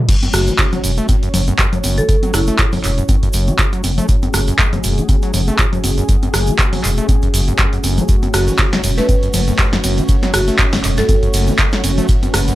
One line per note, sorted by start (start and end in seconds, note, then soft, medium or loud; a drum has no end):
0.09 0.16 F#2 loud
0.09 12.55 A3 medium
0.09 12.55 C#4 medium
0.09 12.55 F#4 medium
0.09 4.08 C#5 medium
0.09 kick loud
0.09 closed hi-hat medium
0.09 crash loud
0.09 shaker medium
0.23 0.29 F#2 medium
0.23 closed hi-hat soft
0.23 high conga medium
0.23 shaker soft
0.34 0.50 F#1 loud
0.34 0.49 F#2 medium
0.34 0.56 F#4 medium
0.34 cross-stick medium
0.34 open hi-hat loud
0.34 shaker medium
0.47 0.54 F#3 medium
0.47 closed hi-hat medium
0.47 shaker soft
0.58 0.66 C#3 medium
0.58 kick loud
0.58 clap loud
0.58 closed hi-hat medium
0.58 shaker medium
0.72 0.80 F#1 medium
0.72 0.82 F#3 medium
0.72 closed hi-hat soft
0.72 high conga soft
0.72 low conga medium
0.72 shaker soft
0.84 1.00 E1 loud
0.84 0.91 F#2 medium
0.84 open hi-hat loud
0.84 shaker medium
0.97 1.07 A3 loud
0.97 closed hi-hat soft
0.97 shaker soft
1.09 1.16 A2 medium
1.09 kick loud
1.09 closed hi-hat medium
1.09 high conga medium
1.09 shaker soft
1.23 1.29 F#2 medium
1.23 closed hi-hat soft
1.23 shaker soft
1.34 1.50 F#1 loud
1.34 1.41 F#2 medium
1.34 open hi-hat loud
1.34 low conga loud
1.34 shaker medium
1.47 1.54 F#2 medium
1.47 closed hi-hat soft
1.47 high conga soft
1.47 shaker soft
1.59 1.66 F#2 loud
1.59 kick loud
1.59 clap loud
1.59 closed hi-hat medium
1.59 shaker medium
1.73 1.79 F#2 medium
1.73 closed hi-hat soft
1.73 low conga medium
1.73 shaker soft
1.84 2.00 F#1 medium
1.84 1.99 F#2 medium
1.84 open hi-hat loud
1.84 high conga medium
1.84 shaker medium
1.98 2.04 F#3 medium
1.98 2.05 A4 medium
1.98 closed hi-hat medium
1.98 shaker soft
2.09 2.16 C#3 medium
2.09 2.18 A4 medium
2.09 kick loud
2.09 closed hi-hat medium
2.09 shaker medium
2.23 2.32 F#3 medium
2.23 closed hi-hat soft
2.23 high conga medium
2.23 shaker soft
2.34 2.50 F#1 loud
2.34 2.41 F#2 medium
2.34 2.73 E4 medium
2.34 cross-stick medium
2.34 open hi-hat loud
2.34 shaker loud
2.47 2.57 A3 loud
2.47 closed hi-hat soft
2.47 shaker soft
2.58 2.66 A2 medium
2.58 kick loud
2.58 clap loud
2.58 closed hi-hat medium
2.58 shaker medium
2.72 2.80 F#1 medium
2.72 2.79 F#2 medium
2.72 open hi-hat medium
2.72 high conga soft
2.72 low conga medium
2.72 shaker soft
2.84 3.00 E1 loud
2.84 2.91 F#2 medium
2.84 clap soft
2.84 open hi-hat loud
2.84 shaker medium
2.98 3.04 F#2 medium
2.98 closed hi-hat soft
2.98 shaker soft
3.09 3.16 F#2 loud
3.09 kick loud
3.09 closed hi-hat medium
3.09 high conga medium
3.09 shaker medium
3.23 3.29 F#2 medium
3.23 kick medium
3.23 closed hi-hat soft
3.23 shaker soft
3.33 3.50 F#1 loud
3.33 3.49 F#2 medium
3.33 open hi-hat loud
3.33 shaker medium
3.48 3.54 F#3 medium
3.48 closed hi-hat soft
3.48 high conga soft
3.48 shaker soft
3.59 3.66 C#3 medium
3.59 kick loud
3.59 clap loud
3.59 closed hi-hat medium
3.59 shaker medium
3.73 3.82 F#3 medium
3.73 closed hi-hat soft
3.73 shaker soft
3.84 4.00 F#1 medium
3.84 3.91 F#2 medium
3.84 open hi-hat loud
3.84 high conga medium
3.84 shaker medium
3.98 4.07 A3 loud
3.98 closed hi-hat medium
3.98 low conga loud
3.98 shaker soft
4.08 4.16 A2 medium
4.08 8.08 G#4 medium
4.08 kick loud
4.08 closed hi-hat medium
4.08 shaker medium
4.22 4.29 F#2 medium
4.22 closed hi-hat soft
4.22 high conga medium
4.22 shaker soft
4.34 4.50 F#1 loud
4.34 4.41 F#2 medium
4.34 cross-stick medium
4.34 open hi-hat loud
4.34 shaker loud
4.47 4.54 F#2 medium
4.47 closed hi-hat soft
4.47 shaker soft
4.59 4.66 F#2 loud
4.59 kick loud
4.59 clap loud
4.59 closed hi-hat medium
4.59 shaker medium
4.73 4.80 F#1 medium
4.73 4.79 F#2 medium
4.73 closed hi-hat soft
4.73 high conga soft
4.73 low conga medium
4.73 shaker soft
4.84 5.00 E1 loud
4.84 4.99 F#2 medium
4.84 open hi-hat loud
4.84 shaker loud
4.98 5.04 F#3 medium
4.98 closed hi-hat soft
4.98 shaker soft
5.09 5.17 C#3 medium
5.09 kick loud
5.09 closed hi-hat medium
5.09 high conga medium
5.09 shaker medium
5.22 5.32 F#3 medium
5.22 closed hi-hat soft
5.22 shaker soft
5.34 5.50 F#1 loud
5.34 5.41 F#2 medium
5.34 open hi-hat loud
5.34 low conga medium
5.34 shaker medium
5.48 5.57 A3 loud
5.48 closed hi-hat soft
5.48 high conga soft
5.48 shaker soft
5.59 5.66 A2 medium
5.59 kick loud
5.59 clap loud
5.59 closed hi-hat medium
5.59 shaker medium
5.73 5.79 F#2 medium
5.73 closed hi-hat soft
5.73 low conga medium
5.73 shaker soft
5.84 6.00 F#1 medium
5.84 5.91 F#2 medium
5.84 open hi-hat loud
5.84 high conga medium
5.84 shaker loud
5.98 6.04 F#2 medium
5.98 closed hi-hat soft
5.98 shaker soft
6.09 6.16 F#2 loud
6.09 kick loud
6.09 closed hi-hat medium
6.09 shaker medium
6.22 6.29 F#2 medium
6.22 closed hi-hat soft
6.22 high conga medium
6.22 shaker soft
6.34 6.50 F#1 loud
6.34 6.49 F#2 medium
6.34 cross-stick medium
6.34 open hi-hat loud
6.34 shaker medium
6.47 6.54 F#3 medium
6.47 closed hi-hat soft
6.47 shaker soft
6.59 6.67 C#3 medium
6.59 kick loud
6.59 clap loud
6.59 closed hi-hat medium
6.59 shaker medium
6.73 6.80 F#1 medium
6.73 6.82 F#3 medium
6.73 open hi-hat medium
6.73 high conga soft
6.73 low conga medium
6.73 shaker soft
6.84 7.00 E1 loud
6.84 6.91 F#2 medium
6.84 clap soft
6.84 open hi-hat loud
6.84 shaker loud
6.98 7.07 A3 loud
6.98 closed hi-hat soft
6.98 shaker soft
7.09 7.16 A2 medium
7.09 kick loud
7.09 closed hi-hat medium
7.09 high conga medium
7.09 shaker medium
7.22 7.29 F#2 medium
7.22 kick medium
7.22 closed hi-hat soft
7.22 shaker soft
7.34 7.50 F#1 loud
7.34 7.41 F#2 medium
7.34 open hi-hat loud
7.34 shaker loud
7.48 7.54 F#2 medium
7.48 closed hi-hat soft
7.48 high conga soft
7.48 shaker soft
7.58 7.66 F#2 loud
7.58 kick loud
7.58 clap loud
7.58 closed hi-hat medium
7.58 shaker medium
7.73 7.79 F#2 medium
7.73 closed hi-hat soft
7.73 shaker soft
7.84 8.00 F#1 medium
7.84 7.99 F#2 medium
7.84 open hi-hat loud
7.84 high conga medium
7.84 shaker medium
7.98 8.04 F#3 medium
7.98 closed hi-hat soft
7.98 low conga medium
7.98 shaker soft
8.08 8.16 F#2 loud
8.08 12.08 C#5 medium
8.08 kick loud
8.08 closed hi-hat medium
8.08 shaker medium
8.22 8.29 F#2 medium
8.22 closed hi-hat soft
8.22 high conga medium
8.22 shaker soft
8.34 8.50 F#1 loud
8.34 8.49 F#2 medium
8.34 8.56 F#4 medium
8.34 cross-stick medium
8.34 open hi-hat loud
8.34 ride medium
8.34 shaker medium
8.47 8.54 F#3 medium
8.47 closed hi-hat soft
8.47 shaker soft
8.58 8.66 C#3 medium
8.58 kick loud
8.58 clap loud
8.58 closed hi-hat medium
8.58 shaker medium
8.73 8.80 F#1 medium
8.73 8.82 F#3 medium
8.73 snare medium
8.73 closed hi-hat soft
8.73 high conga soft
8.73 low conga medium
8.73 shaker soft
8.84 9.00 E1 loud
8.84 8.91 F#2 medium
8.84 open hi-hat loud
8.84 ride medium
8.84 shaker medium
8.98 9.07 A3 loud
8.98 9.19 B4 medium
8.98 snare soft
8.98 closed hi-hat soft
8.98 shaker soft
9.09 9.16 A2 medium
9.09 kick loud
9.09 closed hi-hat medium
9.09 high conga medium
9.09 shaker medium
9.23 9.29 F#2 medium
9.23 closed hi-hat soft
9.23 shaker soft
9.33 9.50 F#1 loud
9.33 9.41 F#2 medium
9.33 open hi-hat loud
9.33 ride medium
9.33 low conga medium
9.33 shaker loud
9.48 9.54 F#2 medium
9.48 closed hi-hat soft
9.48 high conga soft
9.48 shaker soft
9.59 9.66 F#2 loud
9.59 kick loud
9.59 clap loud
9.59 closed hi-hat medium
9.59 shaker medium
9.73 9.79 F#2 medium
9.73 snare medium
9.73 closed hi-hat soft
9.73 low conga medium
9.73 shaker soft
9.84 10.00 F#1 medium
9.84 9.99 F#2 medium
9.84 open hi-hat loud
9.84 ride medium
9.84 high conga medium
9.84 shaker medium
9.98 10.04 F#3 medium
9.98 closed hi-hat medium
9.98 shaker soft
10.08 10.16 C#3 medium
10.08 kick loud
10.08 closed hi-hat medium
10.08 shaker medium
10.23 10.32 F#3 medium
10.23 snare soft
10.23 closed hi-hat soft
10.23 high conga medium
10.23 shaker soft
10.34 10.50 F#1 loud
10.34 10.42 F#2 medium
10.34 10.56 F#4 medium
10.34 cross-stick medium
10.34 open hi-hat loud
10.34 ride medium
10.34 shaker medium
10.48 10.57 A3 loud
10.48 closed hi-hat soft
10.48 shaker soft
10.59 10.67 A2 medium
10.59 kick loud
10.59 clap loud
10.59 closed hi-hat medium
10.59 shaker soft
10.73 10.80 F#1 medium
10.73 10.79 F#2 medium
10.73 snare medium
10.73 open hi-hat medium
10.73 high conga soft
10.73 low conga medium
10.73 shaker soft
10.84 11.00 E1 loud
10.84 10.92 F#2 medium
10.84 clap soft
10.84 open hi-hat loud
10.84 ride medium
10.84 shaker medium
10.97 11.04 F#2 medium
10.97 11.05 A4 medium
10.97 snare soft
10.97 closed hi-hat soft
10.97 shaker soft
11.09 11.17 F#2 loud
11.09 11.18 A4 medium
11.09 kick loud
11.09 closed hi-hat medium
11.09 high conga medium
11.09 shaker soft
11.23 11.29 F#2 medium
11.23 kick medium
11.23 closed hi-hat soft
11.23 shaker soft
11.34 11.50 F#1 loud
11.34 11.49 F#2 medium
11.34 open hi-hat loud
11.34 ride medium
11.34 shaker medium
11.47 11.54 F#3 medium
11.47 closed hi-hat soft
11.47 high conga soft
11.47 shaker soft
11.58 11.66 C#3 medium
11.58 kick loud
11.58 clap loud
11.58 closed hi-hat medium
11.58 shaker soft
11.72 11.82 F#3 medium
11.72 snare medium
11.72 closed hi-hat soft
11.72 shaker soft
11.84 12.00 F#1 medium
11.84 11.91 F#2 medium
11.84 open hi-hat loud
11.84 ride medium
11.84 high conga medium
11.84 shaker medium
11.98 12.07 A3 loud
11.98 closed hi-hat medium
11.98 low conga medium
11.98 shaker soft
12.08 12.16 A2 medium
12.08 12.55 B4 medium
12.08 kick loud
12.08 closed hi-hat medium
12.08 shaker soft
12.23 12.29 F#2 medium
12.23 closed hi-hat soft
12.23 high conga medium
12.23 shaker soft
12.34 12.50 F#1 loud
12.34 12.41 F#2 medium
12.34 cross-stick medium
12.34 open hi-hat loud
12.34 ride medium
12.34 shaker medium
12.48 12.54 F#2 medium
12.48 closed hi-hat medium
12.48 shaker soft